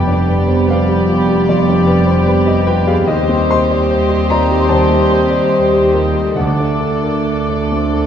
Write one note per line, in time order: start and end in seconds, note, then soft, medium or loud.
0.00 3.05 F1 medium
0.00 1.44 F2 soft
0.00 3.05 F2 medium
0.00 0.68 G3 soft
0.00 3.05 G3 medium
0.00 3.09 B3 soft
0.00 3.10 B3 soft
0.00 0.68 G4 soft
0.00 3.05 G4 medium
0.00 0.27 B4 soft
0.00 0.54 D5 soft
0.00 3.05 D5 medium
0.00 0.66 G5 medium
0.00 0.69 B5 soft
0.08 0.41 D4 soft
0.28 0.61 B4 soft
0.48 0.68 C5 soft
0.68 1.47 G3 soft
0.68 1.48 G4 medium
0.68 0.71 B4 soft
0.68 1.47 D5 medium
0.68 1.45 F5 medium
0.68 1.47 B5 medium
0.72 1.46 B4 soft
0.89 1.20 G4 soft
1.09 1.28 F4 soft
1.28 1.60 G4 soft
1.48 3.05 F2 medium
1.48 2.77 G3 medium
1.48 2.43 F4 soft
1.48 2.79 G4 medium
1.48 2.77 D5 medium
1.48 2.43 D5 medium
1.48 3.07 B5 medium
1.70 2.00 D4 soft
1.87 2.19 B4 medium
2.06 2.26 C5 soft
2.26 2.58 B4 medium
2.47 2.79 G4 soft
2.47 2.65 D#5 medium
2.67 2.87 F4 soft
2.67 2.86 B4 medium
2.67 2.86 G5 medium
2.87 3.08 G4 medium
2.87 3.08 G#4 medium
2.87 3.08 F5 medium
3.07 4.65 D#2 medium
3.07 6.32 D#2 medium
3.07 6.32 G3 medium
3.07 6.20 G3 medium
3.07 6.20 C4 medium
3.07 6.32 C4 medium
3.07 6.32 G4 medium
3.07 6.39 G4 medium
3.07 3.50 G4 medium
3.07 6.36 C5 medium
3.07 3.48 D#5 medium
3.07 6.33 D#5 medium
3.07 6.06 C6 medium
3.29 3.63 C4 soft
3.51 3.84 C5 soft
3.51 4.27 D#5 medium
3.51 4.26 C6 medium
3.71 3.91 D5 soft
3.91 4.22 C5 medium
4.10 4.42 G4 medium
4.30 4.50 F4 soft
4.30 4.67 D5 medium
4.30 4.67 A#5 medium
4.51 4.82 G4 medium
4.69 6.32 D#2 medium
4.69 5.10 C5 medium
4.69 5.87 A5 medium
4.91 5.22 C4 soft
5.12 5.43 C5 medium
5.31 5.51 D5 soft
5.52 5.84 C5 soft
5.73 6.06 G4 soft
5.93 6.15 F4 soft
5.93 6.34 A#4 soft
5.93 6.34 G5 medium
6.15 6.37 G4 soft
6.35 8.06 D2 soft
6.35 7.68 D3 soft
6.35 8.06 A3 soft
6.35 8.06 D4 soft
6.35 8.06 A4 soft
6.35 6.79 A4 soft
6.35 8.06 D5 medium
6.35 8.06 D5 soft
6.35 8.06 F#5 medium
6.35 8.06 D6 soft
6.60 6.96 D4 soft
6.80 7.18 A4 soft
7.03 7.27 A#4 soft
7.27 7.63 A4 soft
7.49 7.85 D4 soft
7.72 7.94 C4 soft
7.93 8.06 A4 soft